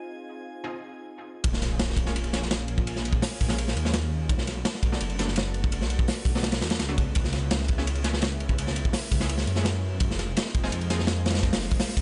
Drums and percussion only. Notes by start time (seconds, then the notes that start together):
1.44 kick, ride
1.53 snare
1.62 snare, ride
1.79 snare, ride
1.90 snare
1.97 kick, ride
2.06 snare
2.16 ride
2.24 ride
2.33 snare, ride
2.42 snare
2.51 snare, ride
2.68 ride
2.78 kick
2.87 ride
2.96 snare
3.05 ride
3.13 kick
3.22 snare, open hi-hat
3.31 snare
3.40 kick, ride
3.48 snare
3.58 ride
3.68 snare
3.77 ride
3.85 snare
3.93 snare, ride
4.29 kick, ride
4.38 snare
4.47 snare, ride
4.65 snare, ride
4.75 snare
4.83 kick, ride
4.92 snare
5.00 ride
5.09 ride
5.19 snare, ride
5.28 snare
5.36 snare, ride
5.54 ride
5.64 kick
5.72 ride
5.81 snare
5.90 ride
5.99 kick
6.08 snare, open hi-hat
6.16 snare
6.25 kick, ride
6.36 snare
6.43 snare, ride
6.52 snare, ride
6.62 snare, ride
6.70 snare, ride
6.79 snare, ride
6.98 kick, ride
7.15 kick, ride
7.24 snare
7.33 snare, ride
7.51 snare, ride
7.60 snare
7.68 kick, ride
7.78 snare
7.87 ride
7.95 ride
8.04 snare, ride
8.13 snare
8.22 snare, ride
8.40 ride
8.49 kick
8.58 ride
8.67 snare
8.76 ride
8.85 kick
8.93 snare, open hi-hat
9.02 snare
9.11 kick, ride
9.20 snare
9.29 ride
9.38 snare
9.47 ride
9.56 snare
9.65 snare, ride
10.00 kick, ride
10.11 snare
10.19 snare, ride
10.37 snare, ride
10.45 snare
10.54 kick, ride
10.64 snare
10.72 ride
10.81 ride
10.90 snare, ride
10.99 snare
11.07 snare, ride
11.26 snare, ride
11.30 snare, ride
11.34 snare, ride
11.38 snare, ride
11.43 kick, ride
11.53 snare, open hi-hat
11.61 snare
11.71 kick, ride
11.80 snare, open hi-hat
11.89 snare
11.97 kick, ride